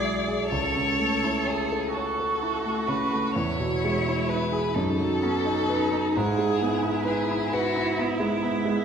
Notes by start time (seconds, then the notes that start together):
Already playing: B1 B2 G#3 E4 G#4 D5
0.04 E5
0.28 G#4
0.49 C#2 A4 C#5
0.76 C#3
0.99 A3
1.24 E4
1.46 G#4 C#5
1.72 A4
1.94 F#4 A4 C#5
2.20 A4
2.43 E4
2.65 A3
2.87 C#3 B4
3.13 A3
3.36 E2 E4 C#5
3.60 B2
3.85 G#3
4.08 E4
4.29 B4
4.52 G#4
4.75 F#2 D#4 A4
4.99 F#3
5.22 B3 C#4
5.45 D#4
5.69 D#4 B4
5.92 D#4
6.14 G#2 E4 G#4
6.38 G#3
6.61 B3
6.83 E4
7.05 G#4 B4
7.31 E4
7.53 F#4 B4
7.76 E4
7.99 B3
8.20 G#3
8.43 B3
8.65 G#3